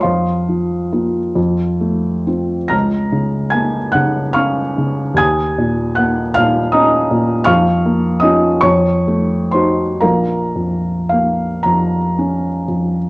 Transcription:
0.00 1.32 F2 soft
0.00 2.24 C5 soft
0.00 2.24 F5 medium
0.00 2.27 C6 medium
0.48 1.19 F3 soft
0.92 1.32 A#3 soft
0.92 1.33 F4 soft
1.35 2.68 F2 medium
1.81 2.55 A3 soft
2.27 2.68 C4 soft
2.27 2.68 F4 soft
2.68 5.14 C#2 soft
2.68 3.49 A#5 medium
2.68 3.49 F6 medium
2.68 3.52 A#6 medium
3.12 3.79 C#3 soft
3.50 4.20 A#3 soft
3.50 3.92 G#5 soft
3.50 3.94 G#6 medium
3.92 4.62 C#3 soft
3.92 4.33 F#5 medium
3.92 4.35 F#6 medium
4.33 5.03 C#4 soft
4.33 5.14 F5 medium
4.33 5.14 C#6 medium
4.33 5.17 F6 medium
4.78 5.19 C#3 soft
5.14 7.41 D#2 medium
5.14 5.93 G#5 medium
5.14 5.93 D#6 medium
5.14 5.97 G#6 medium
5.58 6.20 A#2 soft
5.95 6.59 A#3 soft
5.95 6.33 F#5 soft
5.95 6.35 F#6 medium
6.34 6.96 A#2 medium
6.34 6.70 F5 medium
6.34 6.73 F6 loud
6.72 7.33 C#4 soft
6.72 7.43 D#5 medium
6.72 7.43 A#5 medium
6.72 7.47 D#6 medium
7.11 7.48 A#2 soft
7.44 8.60 F2 medium
7.44 8.18 F5 medium
7.44 8.18 C#6 medium
7.44 8.21 F6 medium
7.86 8.47 A#3 soft
8.20 8.59 C#4 soft
8.20 8.60 F4 medium
8.20 8.59 D#5 medium
8.20 8.62 D#6 medium
8.61 9.98 F2 medium
8.61 9.48 C#5 medium
8.61 9.52 C#6 medium
9.07 9.82 A3 soft
9.51 9.99 D#4 soft
9.51 9.99 F#4 soft
9.51 9.98 C5 medium
9.51 10.01 C6 medium
10.01 13.10 A#1 medium
10.01 12.64 A#4 soft
10.01 11.08 F5 soft
10.01 11.61 A#5 medium
10.56 11.45 F2 soft
11.09 11.98 A#3 soft
11.09 11.65 F5 medium
11.63 12.48 F2 soft
11.63 13.10 A#5 medium
12.19 12.97 C#4 soft
12.68 13.10 F2 soft

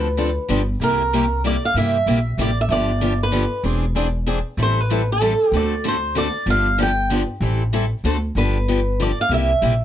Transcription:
0.00 0.37 D2 medium
0.00 0.65 B4 medium
0.17 0.29 D3 medium
0.17 0.29 F3 medium
0.17 0.29 C4 medium
0.17 0.29 D4 medium
0.17 0.29 A4 medium
0.48 0.74 G1 medium
0.48 0.60 D3 medium
0.48 0.60 F3 medium
0.48 0.60 B3 medium
0.48 0.61 D4 medium
0.48 0.61 G4 medium
0.80 1.56 C2 medium
0.80 1.01 C3 medium
0.80 1.01 G3 medium
0.80 1.01 A#3 medium
0.80 1.02 E4 medium
0.80 1.01 G4 medium
0.80 1.41 A#4 medium
1.13 1.24 C3 medium
1.13 1.24 G3 medium
1.13 1.24 A#3 medium
1.13 1.24 E4 medium
1.13 1.24 G4 medium
1.44 1.55 C3 medium
1.44 1.55 G3 medium
1.44 1.55 A#3 loud
1.44 1.55 E4 medium
1.44 1.56 G4 loud
1.44 1.65 D5 medium
1.65 1.76 F5 medium
1.74 2.00 G2 medium
1.74 1.96 C3 medium
1.74 1.96 G3 medium
1.74 1.96 A#3 medium
1.74 1.96 E4 medium
1.74 1.96 G4 medium
1.74 2.35 E5 medium
2.06 2.33 A#1 medium
2.06 2.18 C3 medium
2.06 2.18 G3 medium
2.06 2.18 A#3 medium
2.06 2.18 E4 medium
2.06 2.18 G4 medium
2.37 2.64 A1 medium
2.37 2.49 C3 medium
2.37 2.49 G3 medium
2.37 2.50 A#3 medium
2.37 2.50 E4 medium
2.37 2.50 G4 medium
2.37 2.58 D5 medium
2.61 2.72 E5 medium
2.69 3.44 G1 medium
2.69 2.90 D3 medium
2.69 2.90 F3 medium
2.69 2.90 B3 medium
2.69 2.90 D4 medium
2.69 2.91 G4 medium
2.69 3.18 D5 medium
3.01 3.12 D3 medium
3.01 3.12 F3 medium
3.01 3.12 B3 medium
3.01 3.13 D4 medium
3.01 3.12 G4 medium
3.23 3.63 B4 medium
3.32 3.43 D3 medium
3.32 3.43 F3 medium
3.32 3.43 B3 loud
3.32 3.43 D4 medium
3.32 3.44 G4 medium
3.63 4.39 E1 medium
3.63 3.84 E3 medium
3.63 3.84 C4 medium
3.63 3.84 D4 medium
3.63 3.85 G#4 medium
3.63 3.85 D5 medium
3.96 4.07 E3 medium
3.96 4.07 C4 medium
3.96 4.07 D4 medium
3.96 4.07 G#4 medium
3.96 4.07 D5 medium
4.27 4.38 E3 medium
4.27 4.38 C4 medium
4.27 4.38 D4 medium
4.27 4.38 G#4 medium
4.27 4.38 D5 medium
4.57 5.33 A1 medium
4.57 4.78 E3 medium
4.57 4.78 G3 medium
4.57 4.79 C4 medium
4.57 4.79 E4 medium
4.57 4.79 A4 medium
4.62 4.81 C5 medium
4.81 5.11 B4 medium
4.90 5.01 E3 medium
4.90 5.01 G3 medium
4.90 5.01 C4 medium
4.90 5.01 E4 medium
4.90 5.01 A4 medium
5.12 5.56 A4 medium
5.21 5.32 E3 medium
5.21 5.32 G3 medium
5.21 5.32 C4 medium
5.21 5.32 E4 medium
5.21 5.33 A4 medium
5.52 6.28 D2 medium
5.52 5.73 D3 medium
5.52 5.73 A3 medium
5.52 5.73 C4 medium
5.52 5.73 F#4 medium
5.52 5.73 A4 medium
5.56 5.84 D5 medium
5.84 5.95 D3 medium
5.84 5.95 A3 medium
5.84 5.95 C4 medium
5.84 5.95 F#4 medium
5.84 5.96 A4 medium
5.88 6.16 C5 medium
6.15 6.26 D3 medium
6.15 6.26 A3 medium
6.15 6.27 C4 medium
6.15 6.27 F#4 medium
6.15 6.27 A4 medium
6.15 6.46 D5 medium
6.46 7.22 G1 medium
6.46 6.67 D3 medium
6.46 6.67 F3 medium
6.46 6.67 B3 medium
6.46 6.67 D4 medium
6.46 6.67 G4 medium
6.50 6.78 F5 loud
6.78 6.89 D3 medium
6.78 6.89 F3 medium
6.78 6.89 B3 medium
6.78 6.90 D4 medium
6.78 6.90 G4 medium
6.82 7.10 G5 medium
7.10 7.21 D3 medium
7.10 7.21 F3 medium
7.10 7.21 B3 medium
7.10 7.21 D4 medium
7.10 7.22 G4 medium
7.40 7.91 A1 medium
7.40 7.62 E3 medium
7.40 7.62 G3 medium
7.40 7.62 C4 medium
7.40 7.62 E4 medium
7.40 7.62 A4 medium
7.73 7.84 E3 medium
7.73 7.84 G3 medium
7.73 7.84 C4 medium
7.73 7.84 E4 medium
7.73 7.84 A4 medium
8.04 8.29 D2 medium
8.04 8.16 D3 medium
8.04 8.16 A3 medium
8.04 8.16 C4 medium
8.04 8.16 F#4 medium
8.04 8.16 A4 medium
8.35 9.11 G1 medium
8.35 8.56 D3 medium
8.35 8.57 F3 medium
8.35 8.57 B3 medium
8.35 8.57 D4 medium
8.35 8.57 G4 medium
8.35 9.02 B4 medium
8.68 8.79 D3 medium
8.68 8.79 F3 medium
8.68 8.79 B3 medium
8.68 8.79 D4 medium
8.68 8.79 G4 loud
9.00 9.10 D3 medium
9.00 9.10 F3 medium
9.00 9.11 B3 medium
9.00 9.11 D4 medium
9.00 9.11 G4 medium
9.00 9.20 D5 medium
9.21 9.32 F5 medium
9.29 9.55 C2 medium
9.29 9.51 C3 medium
9.29 9.51 G3 medium
9.29 9.51 A#3 medium
9.29 9.51 E4 medium
9.29 9.51 G4 medium
9.34 9.85 E5 medium
9.62 9.85 A#1 medium
9.62 9.73 C3 medium
9.62 9.73 G3 medium
9.62 9.73 A#3 medium
9.62 9.73 E4 medium
9.62 9.73 G4 medium

